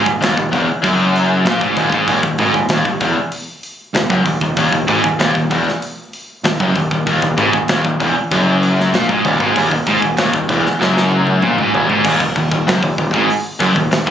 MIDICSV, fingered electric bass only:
0, 0, Header, 1, 2, 480
1, 0, Start_track
1, 0, Key_signature, -6, "minor"
1, 0, Tempo, 622407
1, 1603, Time_signature, 4, 2, 24, 8
1, 10878, End_track
2, 0, Start_track
2, 0, Title_t, "Fingered electric bass"
2, 0, Program_c, 0, 33
2, 49, Note_on_c, 0, 27, 72
2, 153, Note_off_c, 0, 27, 0
2, 157, Note_on_c, 0, 27, 94
2, 272, Note_off_c, 0, 27, 0
2, 292, Note_on_c, 0, 27, 77
2, 399, Note_off_c, 0, 27, 0
2, 410, Note_on_c, 0, 28, 100
2, 518, Note_off_c, 0, 28, 0
2, 648, Note_on_c, 0, 30, 79
2, 1095, Note_off_c, 0, 30, 0
2, 1118, Note_on_c, 0, 34, 93
2, 1232, Note_off_c, 0, 34, 0
2, 1242, Note_on_c, 0, 32, 86
2, 1354, Note_off_c, 0, 32, 0
2, 1362, Note_on_c, 0, 27, 93
2, 1474, Note_off_c, 0, 27, 0
2, 1485, Note_on_c, 0, 32, 94
2, 1596, Note_off_c, 0, 32, 0
2, 1603, Note_on_c, 0, 27, 89
2, 1715, Note_off_c, 0, 27, 0
2, 1723, Note_on_c, 0, 27, 68
2, 1835, Note_off_c, 0, 27, 0
2, 1844, Note_on_c, 0, 32, 91
2, 1955, Note_off_c, 0, 32, 0
2, 1960, Note_on_c, 0, 27, 76
2, 2073, Note_off_c, 0, 27, 0
2, 2080, Note_on_c, 0, 27, 87
2, 2193, Note_off_c, 0, 27, 0
2, 2200, Note_on_c, 0, 27, 74
2, 2314, Note_off_c, 0, 27, 0
2, 2320, Note_on_c, 0, 28, 99
2, 2434, Note_off_c, 0, 28, 0
2, 3043, Note_on_c, 0, 27, 86
2, 3155, Note_off_c, 0, 27, 0
2, 3164, Note_on_c, 0, 30, 91
2, 3276, Note_off_c, 0, 30, 0
2, 3283, Note_on_c, 0, 27, 72
2, 3396, Note_off_c, 0, 27, 0
2, 3407, Note_on_c, 0, 27, 80
2, 3518, Note_off_c, 0, 27, 0
2, 3525, Note_on_c, 0, 27, 75
2, 3637, Note_off_c, 0, 27, 0
2, 3646, Note_on_c, 0, 27, 77
2, 3757, Note_off_c, 0, 27, 0
2, 3767, Note_on_c, 0, 32, 91
2, 3878, Note_off_c, 0, 32, 0
2, 3887, Note_on_c, 0, 27, 77
2, 3998, Note_off_c, 0, 27, 0
2, 4002, Note_on_c, 0, 27, 94
2, 4115, Note_off_c, 0, 27, 0
2, 4129, Note_on_c, 0, 27, 74
2, 4239, Note_off_c, 0, 27, 0
2, 4250, Note_on_c, 0, 28, 95
2, 4360, Note_off_c, 0, 28, 0
2, 4965, Note_on_c, 0, 27, 82
2, 5077, Note_off_c, 0, 27, 0
2, 5090, Note_on_c, 0, 30, 91
2, 5200, Note_off_c, 0, 30, 0
2, 5212, Note_on_c, 0, 27, 82
2, 5321, Note_off_c, 0, 27, 0
2, 5330, Note_on_c, 0, 27, 88
2, 5440, Note_off_c, 0, 27, 0
2, 5451, Note_on_c, 0, 27, 80
2, 5561, Note_off_c, 0, 27, 0
2, 5571, Note_on_c, 0, 27, 80
2, 5681, Note_off_c, 0, 27, 0
2, 5689, Note_on_c, 0, 32, 105
2, 5800, Note_off_c, 0, 32, 0
2, 5811, Note_on_c, 0, 27, 75
2, 5921, Note_off_c, 0, 27, 0
2, 5930, Note_on_c, 0, 27, 96
2, 6040, Note_off_c, 0, 27, 0
2, 6054, Note_on_c, 0, 27, 85
2, 6162, Note_off_c, 0, 27, 0
2, 6175, Note_on_c, 0, 28, 100
2, 6283, Note_off_c, 0, 28, 0
2, 6415, Note_on_c, 0, 30, 88
2, 6861, Note_off_c, 0, 30, 0
2, 6892, Note_on_c, 0, 34, 98
2, 7002, Note_off_c, 0, 34, 0
2, 7012, Note_on_c, 0, 32, 88
2, 7122, Note_off_c, 0, 32, 0
2, 7135, Note_on_c, 0, 27, 100
2, 7243, Note_off_c, 0, 27, 0
2, 7250, Note_on_c, 0, 32, 103
2, 7361, Note_off_c, 0, 32, 0
2, 7373, Note_on_c, 0, 27, 87
2, 7482, Note_off_c, 0, 27, 0
2, 7491, Note_on_c, 0, 27, 74
2, 7601, Note_off_c, 0, 27, 0
2, 7613, Note_on_c, 0, 32, 90
2, 7722, Note_off_c, 0, 32, 0
2, 7731, Note_on_c, 0, 27, 69
2, 7841, Note_off_c, 0, 27, 0
2, 7853, Note_on_c, 0, 27, 96
2, 7962, Note_off_c, 0, 27, 0
2, 7970, Note_on_c, 0, 27, 76
2, 8081, Note_off_c, 0, 27, 0
2, 8092, Note_on_c, 0, 28, 99
2, 8202, Note_off_c, 0, 28, 0
2, 8329, Note_on_c, 0, 30, 87
2, 8778, Note_off_c, 0, 30, 0
2, 8813, Note_on_c, 0, 34, 98
2, 8923, Note_off_c, 0, 34, 0
2, 8934, Note_on_c, 0, 32, 93
2, 9043, Note_off_c, 0, 32, 0
2, 9052, Note_on_c, 0, 27, 93
2, 9162, Note_off_c, 0, 27, 0
2, 9170, Note_on_c, 0, 32, 90
2, 9281, Note_off_c, 0, 32, 0
2, 9290, Note_on_c, 0, 27, 86
2, 9400, Note_off_c, 0, 27, 0
2, 9408, Note_on_c, 0, 27, 81
2, 9520, Note_off_c, 0, 27, 0
2, 9534, Note_on_c, 0, 27, 85
2, 9642, Note_off_c, 0, 27, 0
2, 9653, Note_on_c, 0, 27, 82
2, 9762, Note_off_c, 0, 27, 0
2, 9773, Note_on_c, 0, 30, 101
2, 9882, Note_off_c, 0, 30, 0
2, 9892, Note_on_c, 0, 27, 89
2, 10001, Note_off_c, 0, 27, 0
2, 10010, Note_on_c, 0, 27, 92
2, 10120, Note_off_c, 0, 27, 0
2, 10133, Note_on_c, 0, 32, 98
2, 10242, Note_off_c, 0, 32, 0
2, 10492, Note_on_c, 0, 30, 90
2, 10601, Note_off_c, 0, 30, 0
2, 10612, Note_on_c, 0, 27, 81
2, 10721, Note_off_c, 0, 27, 0
2, 10734, Note_on_c, 0, 27, 87
2, 10842, Note_off_c, 0, 27, 0
2, 10853, Note_on_c, 0, 32, 90
2, 10878, Note_off_c, 0, 32, 0
2, 10878, End_track
0, 0, End_of_file